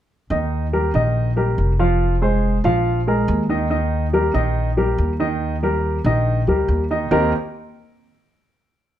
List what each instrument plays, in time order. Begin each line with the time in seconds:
0.30 upright bass D#2, grand piano D#3 D#4 D#5
0.73 grand piano G3 G4 A#4
0.94 upright bass A#1, grand piano D#3 D#4 D#5
1.36 grand piano G3 G4 A#4
1.58 upright bass F1
1.79 grand piano F3 F4 F5
2.22 grand piano G#3 G#4 C5
2.64 upright bass A#1, grand piano F3 F4 F5
3.07 grand piano G#3 G#4 A#4
3.28 upright bass D#2
3.49 grand piano D#3 D#4 D#5
3.70 grand piano D#3 D#4 D#5
4.13 grand piano G3 G4 A#4
4.34 upright bass A#1, grand piano D#3 D#4 D#5
4.77 grand piano G3 G4 A#4
4.98 upright bass D#2
5.20 grand piano D#3 D#4 D#5
5.63 grand piano G3 G4 A#4
6.04 upright bass A#1, grand piano D#3 D#4 D#5
6.47 upright bass D2, grand piano G3 G4 A#4
6.68 upright bass D#2
6.91 grand piano D#3 D#4 D#5
7.11 upright bass D#2, grand piano D#3 A#3 C4 D#4 G4 A#4